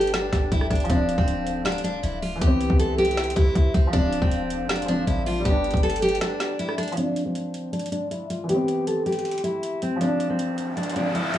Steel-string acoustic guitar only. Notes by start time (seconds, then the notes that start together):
0.14 D4
0.52 E4
0.70 D4
0.90 D4
1.18 C4
1.65 D4
1.84 D4
2.03 E4
2.22 F4
2.42 G4
2.79 A4
2.98 G4
3.36 E4
3.75 C4
3.93 D4
4.22 C4
4.69 D4
4.88 D4
5.07 E4
5.27 F4
5.45 G4
5.83 A4
6.02 G4
6.21 D4
6.59 E4
6.78 D4
6.97 D4
7.25 C4
7.73 D4
7.92 D4
8.11 E4
8.30 F4
8.49 G4
8.87 A4
9.06 G4
9.44 E4
9.82 C4
10.01 D4
10.30 C4
10.77 D4
10.96 D4
11.15 E4
11.34 F4